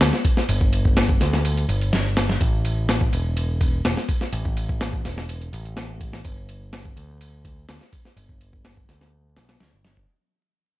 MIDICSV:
0, 0, Header, 1, 3, 480
1, 0, Start_track
1, 0, Tempo, 480000
1, 485, Time_signature, 4, 2, 24, 8
1, 10794, End_track
2, 0, Start_track
2, 0, Title_t, "Picked electric bass"
2, 0, Program_c, 0, 34
2, 6, Note_on_c, 0, 38, 80
2, 102, Note_off_c, 0, 38, 0
2, 489, Note_on_c, 0, 31, 95
2, 1164, Note_off_c, 0, 31, 0
2, 1208, Note_on_c, 0, 38, 80
2, 1644, Note_off_c, 0, 38, 0
2, 1685, Note_on_c, 0, 31, 83
2, 2362, Note_off_c, 0, 31, 0
2, 2407, Note_on_c, 0, 33, 91
2, 3083, Note_off_c, 0, 33, 0
2, 3127, Note_on_c, 0, 28, 79
2, 3803, Note_off_c, 0, 28, 0
2, 3848, Note_on_c, 0, 28, 78
2, 3942, Note_off_c, 0, 28, 0
2, 4326, Note_on_c, 0, 33, 90
2, 5003, Note_off_c, 0, 33, 0
2, 5049, Note_on_c, 0, 28, 81
2, 5484, Note_off_c, 0, 28, 0
2, 5527, Note_on_c, 0, 33, 83
2, 6203, Note_off_c, 0, 33, 0
2, 6248, Note_on_c, 0, 31, 90
2, 6924, Note_off_c, 0, 31, 0
2, 6965, Note_on_c, 0, 38, 76
2, 7642, Note_off_c, 0, 38, 0
2, 7688, Note_on_c, 0, 38, 77
2, 7782, Note_off_c, 0, 38, 0
2, 8165, Note_on_c, 0, 31, 89
2, 8842, Note_off_c, 0, 31, 0
2, 8888, Note_on_c, 0, 38, 76
2, 9368, Note_on_c, 0, 35, 89
2, 9383, Note_off_c, 0, 38, 0
2, 9553, Note_off_c, 0, 35, 0
2, 9606, Note_on_c, 0, 38, 74
2, 9702, Note_off_c, 0, 38, 0
2, 9731, Note_on_c, 0, 31, 74
2, 10043, Note_off_c, 0, 31, 0
2, 10794, End_track
3, 0, Start_track
3, 0, Title_t, "Drums"
3, 8, Note_on_c, 9, 38, 113
3, 8, Note_on_c, 9, 51, 85
3, 108, Note_off_c, 9, 38, 0
3, 108, Note_off_c, 9, 51, 0
3, 131, Note_on_c, 9, 38, 39
3, 231, Note_off_c, 9, 38, 0
3, 247, Note_on_c, 9, 36, 88
3, 247, Note_on_c, 9, 51, 65
3, 347, Note_off_c, 9, 36, 0
3, 347, Note_off_c, 9, 51, 0
3, 371, Note_on_c, 9, 38, 41
3, 471, Note_off_c, 9, 38, 0
3, 487, Note_on_c, 9, 51, 85
3, 587, Note_off_c, 9, 51, 0
3, 611, Note_on_c, 9, 36, 90
3, 711, Note_off_c, 9, 36, 0
3, 727, Note_on_c, 9, 51, 67
3, 827, Note_off_c, 9, 51, 0
3, 852, Note_on_c, 9, 36, 91
3, 952, Note_off_c, 9, 36, 0
3, 967, Note_on_c, 9, 38, 110
3, 967, Note_on_c, 9, 51, 86
3, 1067, Note_off_c, 9, 38, 0
3, 1067, Note_off_c, 9, 51, 0
3, 1091, Note_on_c, 9, 36, 93
3, 1191, Note_off_c, 9, 36, 0
3, 1208, Note_on_c, 9, 38, 37
3, 1208, Note_on_c, 9, 51, 67
3, 1308, Note_off_c, 9, 38, 0
3, 1308, Note_off_c, 9, 51, 0
3, 1334, Note_on_c, 9, 38, 48
3, 1434, Note_off_c, 9, 38, 0
3, 1448, Note_on_c, 9, 51, 81
3, 1548, Note_off_c, 9, 51, 0
3, 1574, Note_on_c, 9, 51, 43
3, 1674, Note_off_c, 9, 51, 0
3, 1688, Note_on_c, 9, 51, 64
3, 1788, Note_off_c, 9, 51, 0
3, 1814, Note_on_c, 9, 51, 42
3, 1914, Note_off_c, 9, 51, 0
3, 1929, Note_on_c, 9, 38, 112
3, 1929, Note_on_c, 9, 46, 79
3, 2029, Note_off_c, 9, 38, 0
3, 2029, Note_off_c, 9, 46, 0
3, 2168, Note_on_c, 9, 38, 98
3, 2168, Note_on_c, 9, 51, 75
3, 2268, Note_off_c, 9, 38, 0
3, 2268, Note_off_c, 9, 51, 0
3, 2294, Note_on_c, 9, 38, 53
3, 2394, Note_off_c, 9, 38, 0
3, 2407, Note_on_c, 9, 36, 103
3, 2408, Note_on_c, 9, 51, 81
3, 2507, Note_off_c, 9, 36, 0
3, 2508, Note_off_c, 9, 51, 0
3, 2648, Note_on_c, 9, 51, 67
3, 2748, Note_off_c, 9, 51, 0
3, 2888, Note_on_c, 9, 38, 108
3, 2888, Note_on_c, 9, 51, 86
3, 2988, Note_off_c, 9, 38, 0
3, 2988, Note_off_c, 9, 51, 0
3, 3011, Note_on_c, 9, 36, 92
3, 3111, Note_off_c, 9, 36, 0
3, 3128, Note_on_c, 9, 51, 66
3, 3228, Note_off_c, 9, 51, 0
3, 3367, Note_on_c, 9, 51, 83
3, 3467, Note_off_c, 9, 51, 0
3, 3607, Note_on_c, 9, 36, 91
3, 3608, Note_on_c, 9, 51, 66
3, 3707, Note_off_c, 9, 36, 0
3, 3708, Note_off_c, 9, 51, 0
3, 3849, Note_on_c, 9, 38, 110
3, 3849, Note_on_c, 9, 51, 86
3, 3949, Note_off_c, 9, 38, 0
3, 3949, Note_off_c, 9, 51, 0
3, 3973, Note_on_c, 9, 38, 39
3, 4073, Note_off_c, 9, 38, 0
3, 4086, Note_on_c, 9, 51, 65
3, 4087, Note_on_c, 9, 36, 91
3, 4186, Note_off_c, 9, 51, 0
3, 4187, Note_off_c, 9, 36, 0
3, 4211, Note_on_c, 9, 38, 38
3, 4311, Note_off_c, 9, 38, 0
3, 4326, Note_on_c, 9, 51, 84
3, 4426, Note_off_c, 9, 51, 0
3, 4452, Note_on_c, 9, 36, 88
3, 4552, Note_off_c, 9, 36, 0
3, 4568, Note_on_c, 9, 51, 68
3, 4668, Note_off_c, 9, 51, 0
3, 4692, Note_on_c, 9, 36, 91
3, 4792, Note_off_c, 9, 36, 0
3, 4808, Note_on_c, 9, 38, 111
3, 4808, Note_on_c, 9, 51, 84
3, 4908, Note_off_c, 9, 38, 0
3, 4908, Note_off_c, 9, 51, 0
3, 4933, Note_on_c, 9, 36, 93
3, 5033, Note_off_c, 9, 36, 0
3, 5050, Note_on_c, 9, 38, 38
3, 5050, Note_on_c, 9, 51, 65
3, 5150, Note_off_c, 9, 38, 0
3, 5150, Note_off_c, 9, 51, 0
3, 5176, Note_on_c, 9, 38, 48
3, 5276, Note_off_c, 9, 38, 0
3, 5291, Note_on_c, 9, 51, 82
3, 5391, Note_off_c, 9, 51, 0
3, 5416, Note_on_c, 9, 51, 42
3, 5516, Note_off_c, 9, 51, 0
3, 5531, Note_on_c, 9, 51, 63
3, 5631, Note_off_c, 9, 51, 0
3, 5655, Note_on_c, 9, 51, 41
3, 5755, Note_off_c, 9, 51, 0
3, 5767, Note_on_c, 9, 38, 111
3, 5767, Note_on_c, 9, 46, 76
3, 5867, Note_off_c, 9, 38, 0
3, 5867, Note_off_c, 9, 46, 0
3, 6008, Note_on_c, 9, 36, 89
3, 6008, Note_on_c, 9, 51, 64
3, 6108, Note_off_c, 9, 36, 0
3, 6108, Note_off_c, 9, 51, 0
3, 6133, Note_on_c, 9, 38, 52
3, 6233, Note_off_c, 9, 38, 0
3, 6247, Note_on_c, 9, 51, 83
3, 6248, Note_on_c, 9, 36, 104
3, 6347, Note_off_c, 9, 51, 0
3, 6348, Note_off_c, 9, 36, 0
3, 6488, Note_on_c, 9, 51, 67
3, 6588, Note_off_c, 9, 51, 0
3, 6728, Note_on_c, 9, 38, 107
3, 6728, Note_on_c, 9, 51, 83
3, 6828, Note_off_c, 9, 38, 0
3, 6828, Note_off_c, 9, 51, 0
3, 6853, Note_on_c, 9, 36, 91
3, 6953, Note_off_c, 9, 36, 0
3, 6969, Note_on_c, 9, 51, 64
3, 7069, Note_off_c, 9, 51, 0
3, 7208, Note_on_c, 9, 51, 83
3, 7308, Note_off_c, 9, 51, 0
3, 7448, Note_on_c, 9, 36, 88
3, 7448, Note_on_c, 9, 51, 65
3, 7548, Note_off_c, 9, 36, 0
3, 7548, Note_off_c, 9, 51, 0
3, 7687, Note_on_c, 9, 38, 110
3, 7687, Note_on_c, 9, 51, 84
3, 7787, Note_off_c, 9, 38, 0
3, 7787, Note_off_c, 9, 51, 0
3, 7812, Note_on_c, 9, 38, 38
3, 7912, Note_off_c, 9, 38, 0
3, 7927, Note_on_c, 9, 36, 86
3, 7928, Note_on_c, 9, 51, 62
3, 8027, Note_off_c, 9, 36, 0
3, 8028, Note_off_c, 9, 51, 0
3, 8054, Note_on_c, 9, 38, 38
3, 8154, Note_off_c, 9, 38, 0
3, 8169, Note_on_c, 9, 51, 80
3, 8269, Note_off_c, 9, 51, 0
3, 8292, Note_on_c, 9, 36, 90
3, 8391, Note_off_c, 9, 36, 0
3, 8409, Note_on_c, 9, 51, 66
3, 8509, Note_off_c, 9, 51, 0
3, 8532, Note_on_c, 9, 36, 90
3, 8632, Note_off_c, 9, 36, 0
3, 8647, Note_on_c, 9, 38, 107
3, 8647, Note_on_c, 9, 51, 81
3, 8747, Note_off_c, 9, 38, 0
3, 8747, Note_off_c, 9, 51, 0
3, 8772, Note_on_c, 9, 36, 90
3, 8872, Note_off_c, 9, 36, 0
3, 8888, Note_on_c, 9, 38, 37
3, 8888, Note_on_c, 9, 51, 65
3, 8988, Note_off_c, 9, 38, 0
3, 8988, Note_off_c, 9, 51, 0
3, 9013, Note_on_c, 9, 38, 47
3, 9113, Note_off_c, 9, 38, 0
3, 9366, Note_on_c, 9, 38, 98
3, 9366, Note_on_c, 9, 51, 72
3, 9466, Note_off_c, 9, 38, 0
3, 9466, Note_off_c, 9, 51, 0
3, 9489, Note_on_c, 9, 38, 98
3, 9489, Note_on_c, 9, 51, 74
3, 9589, Note_off_c, 9, 38, 0
3, 9589, Note_off_c, 9, 51, 0
3, 9604, Note_on_c, 9, 38, 111
3, 9604, Note_on_c, 9, 46, 76
3, 9704, Note_off_c, 9, 38, 0
3, 9704, Note_off_c, 9, 46, 0
3, 9845, Note_on_c, 9, 38, 95
3, 9845, Note_on_c, 9, 51, 70
3, 9945, Note_off_c, 9, 38, 0
3, 9945, Note_off_c, 9, 51, 0
3, 9970, Note_on_c, 9, 36, 79
3, 10070, Note_off_c, 9, 36, 0
3, 10794, End_track
0, 0, End_of_file